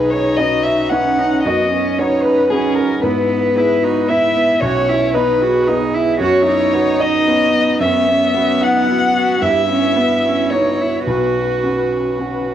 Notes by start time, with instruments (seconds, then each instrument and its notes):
Already playing: grand piano B1 B4, ambient pad C#4 D#4 B4, cello D#4, viola G#4, violin B4
0.10 violin C#5, grand piano C#5
0.36 grand piano C#4 D#4 B4 D#5, viola F#4, violin D#5
0.63 violin E5, grand piano E5
0.89 grand piano C#4 D#4 B4 F#5, cello C#4, viola D#4, violin F#5
1.18 viola C#4, cello D#4
1.43 grand piano F#2, viola B3, ambient pad F#4, cello F#4, violin D#5
1.47 grand piano D#5
1.73 viola B3, cello C#4
1.99 grand piano C#4 F#4 B4 C#5, viola C#4, cello D#4, violin C#5
2.23 violin B4, grand piano B4
2.50 grand piano C#4 F#4 G#4 B4, cello C#4, viola D#4, violin G#4
2.75 violin A#4, grand piano A#4
3.02 grand piano G#2 B4, ambient pad B3 E4, cello B3, viola E4, violin B4
3.56 grand piano B3 E4 B4, cello E4, viola G#4
3.83 cello D#4, viola F#4
4.08 grand piano B3 E4 B4 E5, viola E4, cello E4, violin E5
4.36 viola B3
4.61 grand piano B1 C#5, viola C#4, ambient pad D#4, cello F#4, violin C#5
4.89 cello E4
5.14 grand piano B3 D#4 B4, cello D#4, viola D#4, violin B4
5.41 cello F#4, viola G#4
5.67 grand piano B3 D#4 B4, cello D#4
5.94 cello E4
6.19 grand piano F#2 C#5, ambient pad F#4 B4, cello F#4, viola F#4, violin C#5
6.46 cello D#4, viola E4
6.73 grand piano B3 F#4 B4, viola D#4
7.00 grand piano D#5, violin D#5
7.27 grand piano B3 F#4 B4, viola C#4
7.54 viola B3
7.80 grand piano F#2 E5, viola B3, cello C#4, violin E5
8.07 cello B3, viola C#4
8.34 grand piano B3 F#4 B4, viola C#4
8.61 viola D#4, grand piano F#5, violin F#5
8.88 grand piano B3 F#4 B4, viola E4
9.15 viola F#4
9.42 grand piano G2 E5, ambient pad B3, cello E4, viola G4, violin E5
9.69 cello C#4, viola E4
9.96 grand piano B3 F#4 B4, cello B3
10.25 cello C#4
10.50 grand piano B3 F#4 B4 C#5, cello D#4, violin C#5
10.81 cello E4
11.07 grand piano B1 B4, ambient pad C#4, cello F#4, viola F#4, violin B4
11.63 grand piano C#4 F#4 B4
12.19 grand piano C#4 F#4 B4